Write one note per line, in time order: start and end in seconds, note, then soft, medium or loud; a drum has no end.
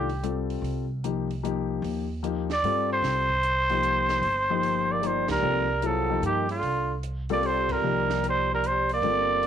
0.00 0.58 C2 medium
0.00 0.45 G4 medium
0.09 open hi-hat soft
0.23 0.84 G3 soft
0.23 0.84 C4 soft
0.23 0.84 F4 soft
0.23 0.84 A4 medium
0.23 closed hi-hat soft
0.50 open hi-hat soft
0.62 1.78 C2 medium
0.62 open hi-hat soft
1.04 1.27 F3 medium
1.04 1.27 A#3 soft
1.04 1.27 D#4 soft
1.04 1.27 G4 medium
1.04 closed hi-hat soft
1.31 open hi-hat soft
1.43 2.04 F3 medium
1.43 2.04 A#3 medium
1.43 2.04 D#4 medium
1.43 2.04 G4 medium
1.43 closed hi-hat soft
1.82 2.58 D#2 medium
1.82 open hi-hat soft
2.23 2.46 F3 medium
2.23 2.47 A#3 medium
2.23 2.47 D#4 medium
2.23 2.47 G4 medium
2.23 closed hi-hat soft
2.50 2.88 D5 medium
2.50 snare soft
2.50 open hi-hat soft
2.63 3.00 G2 medium
2.63 3.24 G3 medium
2.63 3.25 C4 medium
2.63 3.25 F4 medium
2.63 3.25 A4 medium
2.63 open hi-hat soft
2.92 4.93 C5 loud
3.02 4.18 C2 medium
3.02 snare soft
3.02 open hi-hat soft
3.30 kick soft
3.43 closed hi-hat soft
3.70 4.21 F3 medium
3.70 4.21 A#3 medium
3.70 4.21 D#4 soft
3.70 4.21 G4 medium
3.70 open hi-hat soft
3.83 closed hi-hat soft
4.09 snare soft
4.09 open hi-hat soft
4.22 5.24 G1 medium
4.22 open hi-hat soft
4.50 5.01 F3 medium
4.50 5.01 A#3 medium
4.50 5.01 D#4 medium
4.50 5.01 G4 medium
4.63 open hi-hat soft
4.92 5.05 A#3 medium
4.92 5.08 D5 medium
5.03 5.64 F3 medium
5.03 5.28 G3 medium
5.03 5.64 A#3 soft
5.03 5.64 D#4 soft
5.03 5.64 G4 medium
5.03 5.31 C5 medium
5.03 closed hi-hat soft
5.28 5.42 C#2 medium
5.28 5.86 G3 medium
5.28 5.88 A#4 medium
5.28 snare medium
5.28 ride medium
5.42 6.19 C2 medium
5.42 5.66 G3 soft
5.42 5.66 C4 soft
5.42 5.66 F4 soft
5.42 5.66 A4 medium
5.82 6.24 F3 medium
5.82 6.06 F#3 medium
5.82 6.06 B3 medium
5.82 6.06 E4 medium
5.82 6.06 G#4 medium
5.82 6.24 A4 medium
5.82 closed hi-hat soft
6.10 6.44 F3 medium
6.10 6.44 A#3 soft
6.10 6.44 D#4 medium
6.10 6.44 G4 medium
6.22 6.60 G2 medium
6.22 6.48 D#3 medium
6.22 6.49 G4 medium
6.22 closed hi-hat medium
6.49 6.95 D3 medium
6.49 6.96 F4 medium
6.49 open hi-hat soft
6.62 7.78 C2 medium
6.62 open hi-hat soft
7.03 closed hi-hat soft
7.29 7.81 G3 medium
7.29 7.46 A#3 medium
7.29 7.81 C4 medium
7.29 7.81 F4 medium
7.29 7.81 A4 medium
7.29 7.48 D5 medium
7.29 open hi-hat soft
7.43 7.70 G3 medium
7.43 7.73 C5 medium
7.43 open hi-hat soft
7.69 8.24 G3 medium
7.69 8.24 A#4 medium
7.69 kick medium
7.69 ride medium
7.82 8.98 C2 medium
7.82 8.95 F3 medium
7.82 8.95 A#3 soft
7.82 8.95 D#4 soft
7.82 8.95 G4 medium
8.10 snare soft
8.24 8.49 G3 medium
8.24 closed hi-hat soft
8.29 8.50 C5 medium
8.52 8.68 G3 medium
8.52 8.68 A#4 medium
8.64 8.91 C5 medium
8.64 closed hi-hat soft
8.68 8.92 G3 medium
8.89 9.47 A#3 medium
8.89 open hi-hat soft
8.94 9.47 D5 loud
9.02 9.47 G1 medium
9.02 9.47 G3 medium
9.02 9.47 C4 soft
9.02 9.47 F4 soft
9.02 9.47 A4 medium
9.02 open hi-hat soft
9.43 open hi-hat soft